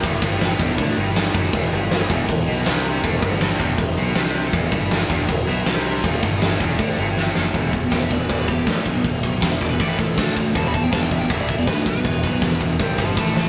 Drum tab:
CC |x-x-x-x-|x-x-x-x-|x-x-x-x-|x-x-x-x-|
SD |--o---o-|--o---o-|--o---o-|--o---o-|
BD |oo-oo--o|o--oo---|oo-oo---|oo-oo---|

CC |x-x-x---|x-x-x-x-|x-x-x-x-|x-x-x-x-|
SD |--o---oo|--o---o-|--o---o-|--o---o-|
BD |oo-oo---|oooooooo|oooooooo|oooooooo|

CC |x-x-x---|
SD |--o---oo|
BD |ooooooo-|